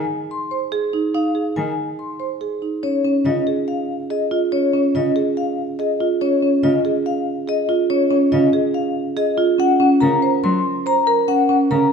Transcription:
Already playing: G#5
0.31 C6
0.51 C5
0.72 G#4
0.93 D#4
1.14 D#4 F5
1.35 G#4
1.56 D#3 G#5
1.99 C6
2.20 C5
2.41 G#4
2.62 D#4
2.83 C#4 C#5
3.04 C#4
3.25 C#3 F4 D#5
3.47 G#4
3.68 F5
4.10 G#4 D#5
4.31 F4
4.52 C#4 C#5
4.74 C#4
4.95 C#3 F4 D#5
5.16 G#4
5.37 F5
5.79 G#4 D#5
6.01 F4
6.21 C#4 C#5
6.43 C#4
6.63 C#3 F4 D#5
6.85 G#4
7.06 F5
7.47 G#4 D#5
7.69 F4
7.90 C#4 C#5
8.11 C#4
8.32 C#3 F4 D#5
8.53 G#4
8.74 F5
9.17 G#4 D#5
9.38 F4
9.59 C#4 F#5
9.80 C#4
10.01 C#3 A#4 A#5
10.22 C5
10.44 F#3 C6
10.86 C5 A#5
11.07 A#4
11.28 C#4 F#5
11.49 C#4
11.71 C#3 A#4 A#5

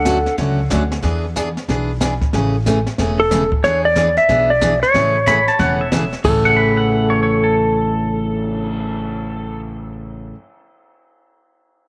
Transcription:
Already playing: D2 D4 A4 F#5
0.05 D3 F#3 A3 C#4 F#4, kick, snare, hi-hat pedal
0.26 snare
0.38 C#2 D3 F#3 A3 C#4 F#4, brush sweep, kick, snare
0.70 D2 D3 F#3 A3 C#4 F#4, kick, snare, hi-hat pedal
0.92 snare
1.03 E2 E3 B3 D4 G#4, brush sweep, kick, snare
1.36 E3 B3 D4 G#4, kick, snare, hi-hat pedal
1.57 snare
1.68 B1 E3 B3 D4 G#4, brush sweep, kick, snare
2.00 E3 B3 D4 G#4, kick, snare, hi-hat pedal
2.21 kick, snare
2.33 A1 C#3 E3 A3 C#4 G#4, brush sweep, kick, snare
2.66 C#3 E3 A3 C#4 G#4, kick, snare, hi-hat pedal
2.86 snare
2.98 E1 C#3 E3 A3 C#4 G#4, brush sweep, kick, snare
3.20 A4
3.31 C#3 E3 A3 C#4 G#4, kick, snare, hi-hat pedal
3.52 kick
3.63 E2 E3 B3 D4 G#4 C#5, brush sweep, kick, snare
3.85 D5
3.96 E3 B3 D4 G#4, kick, snare, hi-hat pedal
4.17 E5, snare
4.29 B1 E3 B3 D4 G#4, brush sweep, kick, snare
4.50 D5
4.61 E3 B3 D4 G#4, kick, snare, hi-hat pedal
4.82 C#5, snare
4.94 A1 C#3 E3 A3 C#4 G#4, brush sweep, kick, snare
5.26 C#3 E3 A3 C#4 G#4 B5, kick, snare, hi-hat pedal
5.48 A5, snare
5.59 E1 C#3 E3 A3 C#4 G#4 F#5, brush sweep, kick, snare
5.81 E5
5.92 C#3 E3 A3 C#4 G#4, kick, snare, hi-hat pedal
6.13 snare
6.24 A1 A2 C#3 E3 A3 C#4 A4, kick, crash
6.45 F#5, cymbal swell
6.56 B5
6.77 F#5
7.10 C#5
7.23 C#5
7.44 A4

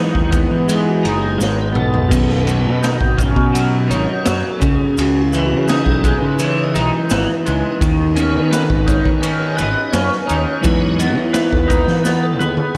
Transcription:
Already playing: E3 F#3 G#3 D#4 B4
0.15 D#2, kick
0.31 B3, kick, ride, maracas
0.51 E3
0.68 G#3, ride, maracas
0.74 E4
0.88 F#4
1.03 F#1 D#4, ride
1.08 G#4
1.38 G#1 G#3 C#5, snare, maracas
1.61 B4
1.72 B1 B3, mid tom
1.80 A4
1.94 floor tom
2.09 B1 B2 D#3, kick, crash, ride, maracas
2.13 B3 C#4 G#4
2.30 A4, snare
2.47 F#3 B4, ride, maracas
2.65 B2
2.82 D#4, snare, ride, maracas
3.01 G#1, kick
3.17 C#4, kick, ride, maracas
3.36 B2, kick
3.53 F#3, ride, maracas
3.88 G#1 D#4 C#5, ride, maracas
4.25 F#2 F#3, snare, ride, maracas
4.52 A4
4.60 C#2 C#3, kick, ride, maracas
4.75 G#4
4.98 C#2 C#3 F#4, ride, maracas
5.22 E4
5.33 E3, ride, maracas
5.46 F#4
5.52 C#3
5.66 E3 C#4 D#4 G#4, snare, ride, maracas
5.86 B1, kick
5.92 A4
6.04 G#3, kick, ride, maracas
6.18 B4
6.22 C#3
6.39 E3 C#5, ride, maracas
6.64 D#5
6.74 B1 D#4, ride, maracas
7.10 G#1 E3, snare, ride, maracas
7.46 C#2 E3 G#3 C#4 D#4, ride, maracas
7.81 D#2 D#3, kick, ride, maracas
8.16 D#3 B3 C#4, ride, maracas
8.21 C#5
8.36 D#3 B4
8.51 A4 B4, snare, ride, maracas
8.70 G#1 B4, kick
8.86 D#4 C#5, kick, ride, maracas
9.05 D#3, kick
9.21 C#4 B4, ride, maracas
9.39 C#5
9.55 B4 D#5, ride, maracas
9.60 G#1
9.91 F#2 C#4 C#5, snare, ride, maracas
10.09 B4, snare
10.26 D#4 C#5, ride, maracas
10.30 D#2
10.61 E2 E3 F#3 G#3 D#4 B4, kick, ride, maracas
10.80 C#5
10.99 B3 D#5, ride, maracas
11.17 E3
11.33 B4 E5, snare, ride, maracas
11.53 D#2 A4, kick
11.68 D#4 B4, kick, ride, maracas
11.87 E3, snare
12.04 B3, snare, maracas
12.23 A4
12.39 D#2 G#4 B4, high tom, maracas
12.57 high tom

